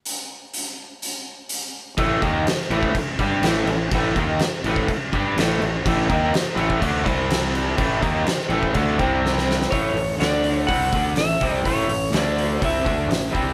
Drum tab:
CC |----------------|x-x-x-x-x-x-x-x-|x-x-x-x-x-x-x-x-|x-x-x-x-x-x-x-x-|
HH |x---x---x---x---|----------------|----------------|----------------|
SD |----------------|----oo------o---|----o-------o---|----o-------o---|
BD |----------------|o-o----oo-o-----|o-o----oo-o-----|o-o----oo-o-----|

CC |x-x-x-x-x-x-----|----------------|----------------|
HH |----------------|o-o-o-o-o-o-o-o-|o-o-o-o-o-o-o-o-|
SD |----oo------oooo|----o-------o---|----o-------o---|
BD |o-o----oo-o-----|o-------o-o---o-|o-------o-o---o-|